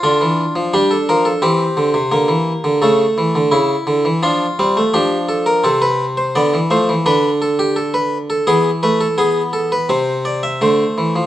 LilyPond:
<<
  \new Staff \with { instrumentName = "Harpsichord" } { \time 4/4 \key d \minor \tempo 4 = 85 << { f'4 g'16 a'16 bes'16 a'16 g'2 | a'2 f'4 g'8 a'16 bes'16 | a'16 b'8 c''16 d''8 c''8 b'8 a'16 g'16 a'16 b'8 a'16 | gis'8 b'16 a'16 gis'8 a'16 b'16 c''8 d''16 e''16 c''4 | } \\ { d'4 d'4 c'4 bes4 | a4 e'4 d'8 c'8 d'4 | c'4 b8 a8 d'2 | b8 a8 b4 c'4 a4 | } >> }
  \new Staff \with { instrumentName = "Harpsichord" } { \clef bass \time 4/4 \key d \minor d16 e8 f16 g8 f8 e8 d16 c16 d16 e8 d16 | cis8 e16 d16 cis8 d16 e16 f8 g16 a16 f4 | c4 d16 e16 f16 e16 d2 | e2 c4 d8 e16 f16 | }
>>